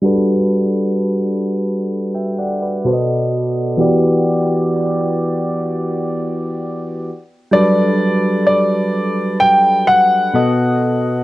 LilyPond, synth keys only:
\new Staff \with { instrumentName = "Synth keys" } { \time 4/4 \key g \major \tempo 4 = 64 << { r2 r16 <e'' g''>16 <d'' fis''>16 <b' d''>8 r8. | r1 | r1 | } \\ { <g d' fis' a' b'>2. <b, b fis' a' c'' dis''>4 | <e b fis' g' d''>2.~ <e b fis' g' d''>8 r8 | <fis g d' a' b'>2. <b, b fis' a' dis''>4 | } >> }